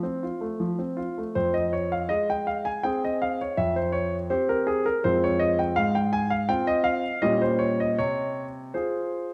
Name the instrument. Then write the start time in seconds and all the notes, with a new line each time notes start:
grand piano
0.03 C4
0.23 F4
0.41 A3
0.60 F3
0.79 C4
0.97 F4
1.18 A3
1.35 F2 C5
1.54 D#5
1.73 C#5
1.92 F5
2.09 G#3 D#5
2.30 G5
2.47 F5
2.65 G#5
2.83 C4 G#4 G5
3.05 D#5
3.22 F5
3.41 C#5
3.57 F2 E5
3.76 C5
3.92 C#5
4.30 C4 G4 C5
4.49 A#4
4.67 G#4
4.86 A#4
5.04 F2 G#3 C4 F4 C5
5.24 C#5
5.40 D#5
5.59 G5
5.76 G#2 F5
5.95 G5
6.13 G#5
6.30 F5
6.49 C4 F4 G5
6.67 D#5
6.84 F5
7.22 A#2 G3 C#4 G4 D#5
7.42 C5
7.59 C#5
7.80 D#5
7.98 C3 C#5
8.74 F4 G#4 C5